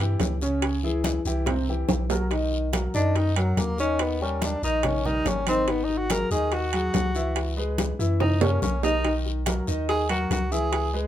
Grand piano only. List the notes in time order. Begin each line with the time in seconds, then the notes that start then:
0.00 E3 E4 G4
0.42 C#3 C#4 C#5
0.84 E3 E4 G#4
1.26 E3 E4 G4
1.48 C3 C4 C5
1.69 E3 E4 G4
2.11 F#3 F#4 A#4
2.32 D#3 D#4 D#5
2.74 F#3 F#4 A#4
2.94 D#3 D#4 D#5
3.36 F#3 F#4 A#4
3.79 D#3 D#4 D#5
4.22 G3 G4 A#4
4.63 D#3 D#4 D#5
5.05 G3 G4 A#4
5.48 D#3 D#4 D#5
5.68 D#3 D#4 D#5
6.10 F#3 F#4 G#4
6.32 D#3 D#4 D#5
6.74 F#3 F#4 G#4
7.15 E3 E4 E5
7.57 G#3 G#4 B4
7.99 E3 E4 E5
8.41 A#3 A#4 C#5
8.84 D#3 D#4 D#5
9.05 D#3 D#4 D#5
9.47 F#3 F#4 A#4
9.67 D#3 D#4 D#5
10.10 F#3 F#4 A#4
10.52 E3 E4 E5
10.94 G#3 G#4 B4